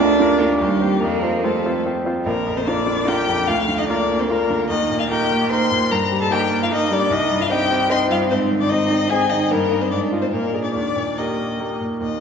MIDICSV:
0, 0, Header, 1, 4, 480
1, 0, Start_track
1, 0, Key_signature, -2, "major"
1, 0, Tempo, 409277
1, 1195, Time_signature, 3, 2, 24, 8
1, 4555, Tempo, 401875
1, 8399, Key_signature, -3, "major"
1, 11755, Tempo, 418994
1, 14377, End_track
2, 0, Start_track
2, 0, Title_t, "Violin"
2, 0, Program_c, 0, 40
2, 0, Note_on_c, 0, 74, 89
2, 454, Note_on_c, 0, 70, 72
2, 471, Note_off_c, 0, 74, 0
2, 685, Note_off_c, 0, 70, 0
2, 692, Note_on_c, 0, 67, 66
2, 1175, Note_on_c, 0, 70, 72
2, 1193, Note_off_c, 0, 67, 0
2, 1674, Note_off_c, 0, 70, 0
2, 1680, Note_on_c, 0, 69, 52
2, 2157, Note_off_c, 0, 69, 0
2, 2646, Note_on_c, 0, 70, 81
2, 3015, Note_on_c, 0, 72, 76
2, 3033, Note_off_c, 0, 70, 0
2, 3133, Note_on_c, 0, 74, 79
2, 3151, Note_off_c, 0, 72, 0
2, 3608, Note_on_c, 0, 79, 82
2, 3625, Note_off_c, 0, 74, 0
2, 4073, Note_on_c, 0, 77, 76
2, 4090, Note_off_c, 0, 79, 0
2, 4437, Note_on_c, 0, 75, 75
2, 4454, Note_off_c, 0, 77, 0
2, 4544, Note_off_c, 0, 75, 0
2, 4552, Note_on_c, 0, 74, 75
2, 4924, Note_on_c, 0, 72, 69
2, 4942, Note_off_c, 0, 74, 0
2, 5032, Note_off_c, 0, 72, 0
2, 5039, Note_on_c, 0, 70, 74
2, 5511, Note_off_c, 0, 70, 0
2, 5523, Note_on_c, 0, 75, 85
2, 5874, Note_off_c, 0, 75, 0
2, 5884, Note_on_c, 0, 77, 72
2, 5931, Note_off_c, 0, 77, 0
2, 6002, Note_on_c, 0, 79, 80
2, 6476, Note_off_c, 0, 79, 0
2, 6497, Note_on_c, 0, 84, 94
2, 6979, Note_on_c, 0, 82, 83
2, 6997, Note_off_c, 0, 84, 0
2, 7334, Note_off_c, 0, 82, 0
2, 7343, Note_on_c, 0, 81, 76
2, 7463, Note_on_c, 0, 79, 88
2, 7481, Note_off_c, 0, 81, 0
2, 7813, Note_off_c, 0, 79, 0
2, 7835, Note_on_c, 0, 77, 82
2, 7877, Note_off_c, 0, 77, 0
2, 7952, Note_on_c, 0, 75, 85
2, 8190, Note_on_c, 0, 74, 82
2, 8208, Note_off_c, 0, 75, 0
2, 8423, Note_on_c, 0, 75, 94
2, 8441, Note_off_c, 0, 74, 0
2, 8778, Note_on_c, 0, 77, 80
2, 8796, Note_off_c, 0, 75, 0
2, 8885, Note_on_c, 0, 79, 94
2, 8903, Note_off_c, 0, 77, 0
2, 9353, Note_off_c, 0, 79, 0
2, 9360, Note_on_c, 0, 84, 98
2, 9454, Note_off_c, 0, 84, 0
2, 9600, Note_on_c, 0, 77, 83
2, 9695, Note_off_c, 0, 77, 0
2, 9835, Note_on_c, 0, 72, 87
2, 9931, Note_off_c, 0, 72, 0
2, 10192, Note_on_c, 0, 74, 78
2, 10300, Note_on_c, 0, 75, 88
2, 10317, Note_off_c, 0, 74, 0
2, 10782, Note_on_c, 0, 80, 91
2, 10800, Note_off_c, 0, 75, 0
2, 11022, Note_on_c, 0, 75, 79
2, 11039, Note_off_c, 0, 80, 0
2, 11278, Note_on_c, 0, 70, 85
2, 11296, Note_off_c, 0, 75, 0
2, 11639, Note_on_c, 0, 72, 66
2, 11657, Note_off_c, 0, 70, 0
2, 11749, Note_off_c, 0, 72, 0
2, 11756, Note_on_c, 0, 74, 73
2, 11847, Note_off_c, 0, 74, 0
2, 12104, Note_on_c, 0, 72, 61
2, 12152, Note_off_c, 0, 72, 0
2, 12215, Note_on_c, 0, 70, 65
2, 12571, Note_off_c, 0, 70, 0
2, 12589, Note_on_c, 0, 74, 53
2, 12694, Note_off_c, 0, 74, 0
2, 12701, Note_on_c, 0, 74, 66
2, 13205, Note_on_c, 0, 75, 50
2, 13222, Note_off_c, 0, 74, 0
2, 13926, Note_off_c, 0, 75, 0
2, 14173, Note_on_c, 0, 75, 53
2, 14377, Note_off_c, 0, 75, 0
2, 14377, End_track
3, 0, Start_track
3, 0, Title_t, "Cello"
3, 0, Program_c, 1, 42
3, 0, Note_on_c, 1, 62, 101
3, 448, Note_off_c, 1, 62, 0
3, 457, Note_on_c, 1, 58, 75
3, 551, Note_off_c, 1, 58, 0
3, 705, Note_on_c, 1, 55, 88
3, 1181, Note_off_c, 1, 55, 0
3, 1188, Note_on_c, 1, 58, 84
3, 1684, Note_on_c, 1, 57, 66
3, 1702, Note_off_c, 1, 58, 0
3, 2169, Note_off_c, 1, 57, 0
3, 2655, Note_on_c, 1, 58, 69
3, 2749, Note_off_c, 1, 58, 0
3, 3006, Note_on_c, 1, 60, 65
3, 3055, Note_off_c, 1, 60, 0
3, 3120, Note_on_c, 1, 62, 74
3, 3598, Note_on_c, 1, 67, 86
3, 3615, Note_off_c, 1, 62, 0
3, 4075, Note_off_c, 1, 67, 0
3, 4093, Note_on_c, 1, 65, 61
3, 4187, Note_off_c, 1, 65, 0
3, 4437, Note_on_c, 1, 63, 69
3, 4556, Note_on_c, 1, 62, 65
3, 4574, Note_off_c, 1, 63, 0
3, 4917, Note_off_c, 1, 62, 0
3, 4927, Note_on_c, 1, 60, 65
3, 4973, Note_off_c, 1, 60, 0
3, 5047, Note_on_c, 1, 58, 70
3, 5528, Note_on_c, 1, 63, 66
3, 5546, Note_off_c, 1, 58, 0
3, 5884, Note_off_c, 1, 63, 0
3, 5889, Note_on_c, 1, 65, 71
3, 6002, Note_off_c, 1, 65, 0
3, 6012, Note_on_c, 1, 67, 77
3, 6483, Note_on_c, 1, 72, 84
3, 6501, Note_off_c, 1, 67, 0
3, 6965, Note_off_c, 1, 72, 0
3, 6981, Note_on_c, 1, 70, 65
3, 7076, Note_off_c, 1, 70, 0
3, 7327, Note_on_c, 1, 69, 78
3, 7445, Note_off_c, 1, 69, 0
3, 7455, Note_on_c, 1, 67, 80
3, 7550, Note_off_c, 1, 67, 0
3, 7820, Note_on_c, 1, 65, 66
3, 7937, Note_on_c, 1, 63, 77
3, 7955, Note_off_c, 1, 65, 0
3, 8167, Note_on_c, 1, 62, 68
3, 8185, Note_off_c, 1, 63, 0
3, 8404, Note_on_c, 1, 63, 74
3, 8422, Note_off_c, 1, 62, 0
3, 8763, Note_on_c, 1, 65, 77
3, 8781, Note_off_c, 1, 63, 0
3, 8855, Note_off_c, 1, 65, 0
3, 8862, Note_on_c, 1, 67, 86
3, 9350, Note_on_c, 1, 72, 90
3, 9368, Note_off_c, 1, 67, 0
3, 9584, Note_off_c, 1, 72, 0
3, 9592, Note_on_c, 1, 65, 69
3, 9812, Note_off_c, 1, 65, 0
3, 9819, Note_on_c, 1, 60, 74
3, 10178, Note_off_c, 1, 60, 0
3, 10189, Note_on_c, 1, 62, 71
3, 10296, Note_off_c, 1, 62, 0
3, 10303, Note_on_c, 1, 63, 78
3, 10792, Note_on_c, 1, 68, 88
3, 10810, Note_off_c, 1, 63, 0
3, 11024, Note_off_c, 1, 68, 0
3, 11031, Note_on_c, 1, 63, 65
3, 11273, Note_on_c, 1, 58, 65
3, 11291, Note_off_c, 1, 63, 0
3, 11639, Note_on_c, 1, 60, 60
3, 11657, Note_off_c, 1, 58, 0
3, 11749, Note_on_c, 1, 62, 65
3, 11766, Note_off_c, 1, 60, 0
3, 12098, Note_off_c, 1, 62, 0
3, 12105, Note_on_c, 1, 60, 53
3, 12152, Note_off_c, 1, 60, 0
3, 12214, Note_on_c, 1, 58, 54
3, 12554, Note_off_c, 1, 58, 0
3, 12561, Note_on_c, 1, 62, 44
3, 12689, Note_off_c, 1, 62, 0
3, 12696, Note_on_c, 1, 62, 53
3, 13180, Note_off_c, 1, 62, 0
3, 13190, Note_on_c, 1, 63, 41
3, 13904, Note_off_c, 1, 63, 0
3, 14148, Note_on_c, 1, 58, 43
3, 14377, Note_off_c, 1, 58, 0
3, 14377, End_track
4, 0, Start_track
4, 0, Title_t, "Grand piano"
4, 0, Program_c, 2, 0
4, 0, Control_c, 2, 64, 127
4, 0, Note_on_c, 2, 38, 74
4, 0, Note_on_c, 2, 62, 52
4, 0, Note_on_c, 2, 65, 52
4, 9, Note_on_c, 2, 70, 54
4, 209, Note_off_c, 2, 62, 0
4, 209, Note_off_c, 2, 65, 0
4, 215, Note_off_c, 2, 70, 0
4, 231, Note_on_c, 2, 62, 54
4, 237, Note_on_c, 2, 65, 52
4, 243, Note_on_c, 2, 70, 61
4, 444, Note_off_c, 2, 62, 0
4, 447, Note_off_c, 2, 65, 0
4, 451, Note_off_c, 2, 70, 0
4, 473, Note_on_c, 2, 62, 53
4, 477, Note_on_c, 2, 65, 46
4, 486, Note_on_c, 2, 70, 52
4, 686, Note_off_c, 2, 62, 0
4, 688, Note_off_c, 2, 65, 0
4, 693, Note_off_c, 2, 70, 0
4, 711, Note_on_c, 2, 39, 64
4, 732, Control_c, 2, 64, 0
4, 742, Note_off_c, 2, 38, 0
4, 928, Control_c, 2, 64, 127
4, 944, Note_off_c, 2, 39, 0
4, 946, Note_on_c, 2, 60, 47
4, 955, Note_on_c, 2, 67, 46
4, 957, Note_on_c, 2, 72, 51
4, 1168, Note_off_c, 2, 60, 0
4, 1174, Note_off_c, 2, 67, 0
4, 1175, Note_off_c, 2, 72, 0
4, 1195, Note_on_c, 2, 41, 59
4, 1220, Control_c, 2, 64, 0
4, 1415, Control_c, 2, 64, 127
4, 1433, Note_off_c, 2, 41, 0
4, 1440, Note_on_c, 2, 60, 43
4, 1443, Note_on_c, 2, 65, 41
4, 1452, Note_on_c, 2, 72, 49
4, 1659, Note_off_c, 2, 60, 0
4, 1661, Note_off_c, 2, 65, 0
4, 1666, Note_off_c, 2, 72, 0
4, 1685, Note_on_c, 2, 60, 45
4, 1692, Note_on_c, 2, 65, 46
4, 1693, Note_on_c, 2, 72, 46
4, 1903, Note_off_c, 2, 60, 0
4, 1907, Note_off_c, 2, 65, 0
4, 1907, Note_off_c, 2, 72, 0
4, 1938, Note_on_c, 2, 60, 44
4, 1943, Note_on_c, 2, 65, 43
4, 1946, Note_on_c, 2, 72, 45
4, 2151, Note_off_c, 2, 60, 0
4, 2153, Note_off_c, 2, 65, 0
4, 2155, Note_off_c, 2, 72, 0
4, 2178, Note_on_c, 2, 60, 43
4, 2182, Note_on_c, 2, 65, 39
4, 2188, Note_on_c, 2, 72, 47
4, 2392, Note_off_c, 2, 60, 0
4, 2394, Note_off_c, 2, 65, 0
4, 2397, Note_off_c, 2, 72, 0
4, 2412, Note_on_c, 2, 60, 45
4, 2416, Note_on_c, 2, 65, 41
4, 2421, Note_on_c, 2, 72, 46
4, 2628, Note_off_c, 2, 60, 0
4, 2631, Note_off_c, 2, 65, 0
4, 2634, Note_off_c, 2, 72, 0
4, 2648, Note_on_c, 2, 34, 60
4, 2676, Control_c, 2, 64, 0
4, 2880, Control_c, 2, 64, 127
4, 2887, Note_on_c, 2, 41, 48
4, 3132, Note_on_c, 2, 62, 51
4, 3135, Note_on_c, 2, 65, 46
4, 3139, Note_on_c, 2, 70, 50
4, 3269, Note_off_c, 2, 41, 0
4, 3343, Note_off_c, 2, 62, 0
4, 3346, Note_off_c, 2, 65, 0
4, 3348, Note_off_c, 2, 70, 0
4, 3361, Note_on_c, 2, 62, 50
4, 3585, Note_off_c, 2, 62, 0
4, 3603, Note_on_c, 2, 62, 46
4, 3606, Note_on_c, 2, 65, 49
4, 3615, Note_on_c, 2, 70, 52
4, 3816, Note_off_c, 2, 62, 0
4, 3818, Note_off_c, 2, 65, 0
4, 3823, Note_off_c, 2, 70, 0
4, 3841, Note_on_c, 2, 41, 52
4, 4032, Note_off_c, 2, 34, 0
4, 4078, Note_off_c, 2, 41, 0
4, 4086, Note_on_c, 2, 38, 64
4, 4101, Control_c, 2, 64, 0
4, 4318, Control_c, 2, 64, 127
4, 4318, Note_on_c, 2, 50, 47
4, 4566, Note_on_c, 2, 58, 47
4, 4571, Note_on_c, 2, 65, 48
4, 4575, Note_on_c, 2, 70, 50
4, 4700, Note_off_c, 2, 50, 0
4, 4778, Note_off_c, 2, 58, 0
4, 4781, Note_off_c, 2, 65, 0
4, 4783, Note_off_c, 2, 70, 0
4, 4810, Note_on_c, 2, 58, 47
4, 5032, Note_off_c, 2, 58, 0
4, 5050, Note_on_c, 2, 58, 46
4, 5053, Note_on_c, 2, 65, 48
4, 5060, Note_on_c, 2, 70, 47
4, 5262, Note_off_c, 2, 58, 0
4, 5263, Note_off_c, 2, 65, 0
4, 5267, Note_off_c, 2, 70, 0
4, 5292, Note_on_c, 2, 50, 50
4, 5480, Note_off_c, 2, 38, 0
4, 5526, Note_off_c, 2, 50, 0
4, 5527, Note_on_c, 2, 39, 60
4, 5540, Control_c, 2, 64, 0
4, 5713, Control_c, 2, 64, 127
4, 5771, Note_on_c, 2, 46, 49
4, 6014, Note_on_c, 2, 58, 47
4, 6019, Note_on_c, 2, 63, 47
4, 6025, Note_on_c, 2, 70, 55
4, 6150, Note_off_c, 2, 46, 0
4, 6225, Note_off_c, 2, 58, 0
4, 6228, Note_off_c, 2, 63, 0
4, 6231, Note_off_c, 2, 70, 0
4, 6255, Note_on_c, 2, 58, 50
4, 6487, Note_off_c, 2, 58, 0
4, 6505, Note_on_c, 2, 58, 47
4, 6508, Note_on_c, 2, 63, 46
4, 6510, Note_on_c, 2, 70, 51
4, 6713, Note_off_c, 2, 58, 0
4, 6715, Note_off_c, 2, 63, 0
4, 6715, Note_off_c, 2, 70, 0
4, 6739, Note_on_c, 2, 46, 48
4, 6926, Note_off_c, 2, 39, 0
4, 6970, Note_on_c, 2, 43, 64
4, 6972, Note_off_c, 2, 46, 0
4, 6990, Control_c, 2, 64, 0
4, 7195, Control_c, 2, 64, 127
4, 7212, Note_on_c, 2, 55, 50
4, 7448, Note_on_c, 2, 58, 50
4, 7450, Note_on_c, 2, 63, 51
4, 7457, Note_on_c, 2, 70, 52
4, 7594, Note_off_c, 2, 55, 0
4, 7663, Note_off_c, 2, 58, 0
4, 7664, Note_off_c, 2, 63, 0
4, 7668, Note_off_c, 2, 70, 0
4, 7681, Note_on_c, 2, 58, 52
4, 7910, Note_off_c, 2, 58, 0
4, 7928, Note_on_c, 2, 58, 46
4, 7934, Note_on_c, 2, 63, 51
4, 7937, Note_on_c, 2, 70, 55
4, 8140, Note_off_c, 2, 58, 0
4, 8143, Note_off_c, 2, 63, 0
4, 8145, Note_off_c, 2, 70, 0
4, 8160, Note_on_c, 2, 55, 53
4, 8358, Note_off_c, 2, 43, 0
4, 8398, Note_off_c, 2, 55, 0
4, 8398, Note_on_c, 2, 36, 66
4, 8422, Control_c, 2, 64, 0
4, 8624, Control_c, 2, 64, 127
4, 8637, Note_on_c, 2, 43, 52
4, 8872, Note_on_c, 2, 60, 55
4, 8875, Note_on_c, 2, 63, 55
4, 8883, Note_on_c, 2, 75, 62
4, 9019, Note_off_c, 2, 43, 0
4, 9089, Note_off_c, 2, 60, 0
4, 9090, Note_off_c, 2, 63, 0
4, 9094, Note_off_c, 2, 75, 0
4, 9115, Note_on_c, 2, 60, 54
4, 9332, Note_off_c, 2, 60, 0
4, 9350, Note_on_c, 2, 60, 50
4, 9356, Note_on_c, 2, 63, 54
4, 9360, Note_on_c, 2, 75, 58
4, 9566, Note_off_c, 2, 60, 0
4, 9570, Note_off_c, 2, 63, 0
4, 9572, Note_off_c, 2, 75, 0
4, 9601, Note_on_c, 2, 43, 51
4, 9788, Note_off_c, 2, 36, 0
4, 9836, Note_off_c, 2, 43, 0
4, 9846, Note_on_c, 2, 44, 72
4, 9856, Control_c, 2, 64, 0
4, 10016, Control_c, 2, 64, 127
4, 10091, Note_on_c, 2, 51, 54
4, 10325, Note_on_c, 2, 60, 53
4, 10331, Note_on_c, 2, 63, 50
4, 10335, Note_on_c, 2, 75, 56
4, 10465, Note_off_c, 2, 51, 0
4, 10535, Note_off_c, 2, 60, 0
4, 10538, Note_off_c, 2, 63, 0
4, 10540, Note_off_c, 2, 75, 0
4, 10573, Note_on_c, 2, 60, 51
4, 10793, Note_off_c, 2, 60, 0
4, 10811, Note_on_c, 2, 60, 47
4, 10817, Note_on_c, 2, 63, 48
4, 10820, Note_on_c, 2, 75, 52
4, 11018, Note_off_c, 2, 60, 0
4, 11021, Note_off_c, 2, 63, 0
4, 11023, Note_off_c, 2, 75, 0
4, 11055, Note_on_c, 2, 51, 52
4, 11235, Note_off_c, 2, 44, 0
4, 11283, Note_off_c, 2, 51, 0
4, 11286, Note_on_c, 2, 43, 67
4, 11293, Control_c, 2, 64, 0
4, 11488, Control_c, 2, 64, 127
4, 11515, Note_on_c, 2, 63, 47
4, 11520, Note_on_c, 2, 75, 48
4, 11731, Note_off_c, 2, 63, 0
4, 11733, Note_off_c, 2, 75, 0
4, 11746, Note_off_c, 2, 43, 0
4, 11771, Note_on_c, 2, 44, 59
4, 11776, Control_c, 2, 64, 0
4, 11970, Control_c, 2, 64, 127
4, 11999, Note_on_c, 2, 65, 43
4, 12003, Note_on_c, 2, 75, 45
4, 12206, Note_off_c, 2, 65, 0
4, 12209, Note_off_c, 2, 75, 0
4, 12219, Note_off_c, 2, 44, 0
4, 12234, Note_on_c, 2, 46, 52
4, 12244, Control_c, 2, 64, 0
4, 12437, Control_c, 2, 64, 127
4, 12471, Note_on_c, 2, 68, 38
4, 12475, Note_on_c, 2, 74, 40
4, 12686, Note_off_c, 2, 68, 0
4, 12688, Note_off_c, 2, 74, 0
4, 12696, Note_off_c, 2, 46, 0
4, 12709, Note_on_c, 2, 39, 42
4, 12729, Control_c, 2, 64, 0
4, 12939, Control_c, 2, 64, 127
4, 12952, Note_on_c, 2, 46, 36
4, 13199, Note_on_c, 2, 58, 32
4, 13206, Note_on_c, 2, 67, 33
4, 13214, Note_on_c, 2, 70, 37
4, 13340, Note_off_c, 2, 46, 0
4, 13415, Note_off_c, 2, 58, 0
4, 13419, Note_off_c, 2, 67, 0
4, 13423, Note_off_c, 2, 70, 0
4, 13444, Note_on_c, 2, 58, 31
4, 13666, Note_off_c, 2, 58, 0
4, 13684, Note_on_c, 2, 58, 31
4, 13685, Note_on_c, 2, 67, 30
4, 13692, Note_on_c, 2, 70, 31
4, 13899, Note_off_c, 2, 58, 0
4, 13900, Note_off_c, 2, 67, 0
4, 13904, Note_off_c, 2, 70, 0
4, 13928, Note_on_c, 2, 46, 30
4, 14117, Note_off_c, 2, 39, 0
4, 14149, Note_on_c, 2, 39, 40
4, 14162, Note_off_c, 2, 46, 0
4, 14183, Control_c, 2, 64, 0
4, 14377, Note_off_c, 2, 39, 0
4, 14377, End_track
0, 0, End_of_file